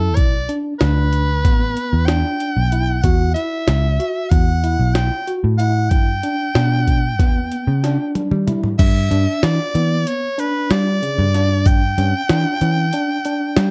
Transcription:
Already playing: picked electric bass F#2, tine electric piano E4, soprano saxophone A4
0.15 picked electric bass B1, soprano saxophone D5, kick, closed hi-hat
0.49 tine electric piano D4, closed hi-hat
0.79 picked electric bass D2, tine electric piano D4, soprano saxophone B4, snare, closed hi-hat
1.13 closed hi-hat
1.45 picked electric bass A1, tine electric piano B3, kick, snare, closed hi-hat
1.77 closed hi-hat
1.93 picked electric bass E2
2.06 tine electric piano D4, soprano saxophone G5, snare, closed hi-hat
2.40 closed hi-hat
2.57 picked electric bass B1
2.72 tine electric piano E4, closed hi-hat
3.02 picked electric bass E2, tine electric piano F#4, soprano saxophone F#5, kick, closed hi-hat
3.34 tine electric piano E4, soprano saxophone E5, closed hi-hat
3.68 picked electric bass C#2, snare, closed hi-hat
4.00 tine electric piano F#4, closed hi-hat
4.30 picked electric bass E2, soprano saxophone F#5, kick, closed hi-hat
4.64 tine electric piano E4, closed hi-hat
4.79 picked electric bass B1
4.94 soprano saxophone G5, snare, closed hi-hat
5.27 tine electric piano F#4, closed hi-hat
5.44 picked electric bass A2
5.58 tine electric piano E4, soprano saxophone F#5, closed hi-hat
5.90 picked electric bass G2, soprano saxophone G5, kick, closed hi-hat
6.23 tine electric piano D4, closed hi-hat
6.55 picked electric bass B2, tine electric piano D4, snare, closed hi-hat
6.87 kick, closed hi-hat
7.19 picked electric bass E2, tine electric piano B3, kick, snare, closed hi-hat
7.52 closed hi-hat
7.67 picked electric bass C#3
7.84 tine electric piano D4, snare, closed hi-hat
8.15 closed hi-hat, high tom
8.31 picked electric bass G3, mid tom
8.47 tine electric piano E4, closed hi-hat, mid tom
8.64 floor tom
8.79 picked electric bass G2, soprano saxophone E5, kick, closed hi-hat, crash, shaker
9.11 picked electric bass G2, tine electric piano D4, closed hi-hat
9.43 picked electric bass E3, soprano saxophone D5, snare, closed hi-hat
9.75 picked electric bass E3, tine electric piano B3, closed hi-hat
10.07 soprano saxophone C#5, closed hi-hat
10.38 tine electric piano D4, soprano saxophone B4, closed hi-hat, shaker
10.71 picked electric bass G3, soprano saxophone D5, snare, closed hi-hat
11.02 tine electric piano C#3, closed hi-hat
11.19 picked electric bass G2
11.34 tine electric piano D4, snare, closed hi-hat
11.66 soprano saxophone G5, kick, closed hi-hat, shaker
11.98 picked electric bass G2, tine electric piano C#4, closed hi-hat
12.29 picked electric bass E3, tine electric piano D4, snare, closed hi-hat
12.61 picked electric bass E3, tine electric piano C#4, closed hi-hat
12.93 tine electric piano D4, closed hi-hat
13.25 tine electric piano D4, closed hi-hat, shaker
13.56 picked electric bass G3, snare, closed hi-hat

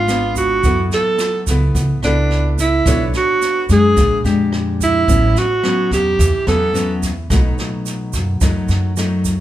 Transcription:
Already playing: upright bass G#1, nylon-string guitar G#3, alto saxophone F4
0.08 nylon-string guitar B3 D4 F4, cross-stick, snare, shaker
0.36 alto saxophone F#4, kick, snare, shaker
0.63 upright bass F#2, nylon-string guitar F#3 B3 E4 A4, kick, snare, shaker
0.91 alto saxophone A4, snare, shaker
1.18 cross-stick, snare, shaker
1.47 upright bass C#2, nylon-string guitar B3 E4 A4, kick, snare, shaker
1.75 upright bass C#2, kick, snare, shaker
2.02 upright bass C#2, nylon-string guitar B3 E4 A4, alto saxophone D4, cross-stick, snare, shaker
2.30 snare
2.58 alto saxophone E4, kick, snare, shaker
2.86 upright bass B1, nylon-string guitar B3 D4 A4 C#5, kick, cross-stick, snare, shaker
3.13 alto saxophone F#4, snare, shaker
3.42 snare, shaker
3.69 upright bass F#2, nylon-string guitar G#3 D4, alto saxophone G#4, kick, snare, shaker
3.97 upright bass A#1, nylon-string guitar A#2, kick, cross-stick, snare, shaker
4.24 upright bass F2, nylon-string guitar G#3 D4 G4, snare, shaker
4.52 cross-stick, snare
4.80 alto saxophone E4, kick, snare, shaker
5.08 upright bass A1, nylon-string guitar A2 F#3 B3 C#4, kick, snare, shaker
5.36 alto saxophone F#4, snare, shaker
5.63 nylon-string guitar F#3 B3 C#4, cross-stick, snare
5.91 upright bass E2, alto saxophone G4, kick, snare, shaker
6.19 upright bass E2, nylon-string guitar E3, kick, snare, shaker
6.47 upright bass E2, nylon-string guitar F#3 B3 C#4, alto saxophone A4, cross-stick, snare, shaker
6.74 nylon-string guitar F#3 B3 C#4, snare, shaker
7.02 kick, snare, shaker
7.30 upright bass B1, nylon-string guitar B2 F#3 A3 D#4, kick, cross-stick, snare, shaker
7.58 snare, shaker
7.86 snare, shaker
8.13 upright bass F#2, kick, snare, shaker
8.41 upright bass F#2, nylon-string guitar F#2 F#3 A3 D#4, kick, cross-stick, snare, shaker
8.68 upright bass F#2, snare, shaker
8.97 nylon-string guitar F#3 A3 D#4, cross-stick, snare, shaker
9.25 kick, snare, shaker

